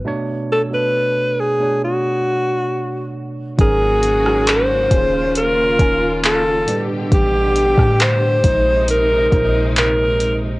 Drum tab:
HH |----------------|x-x-x-x-x-x-x-x-|x-x-x-x-x-x-x-x-|
CP |----------------|----x-------x---|----x-------x---|
SD |----------------|---r------------|---r------------|
BD |----------------|o-----o---o-----|o--o--o---o-----|